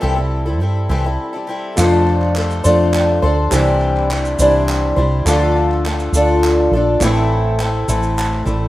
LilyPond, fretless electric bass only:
\new Staff \with { instrumentName = "Fretless electric bass" } { \clef bass \time 6/8 \key f \major \tempo 4. = 69 c,4 g,8 c,8 r4 | f,4. f,4 d,8 | c,4. c,4 c,8 | d,4. d,4 bes,,8 |
a,,4. a,,4 a,,8 | }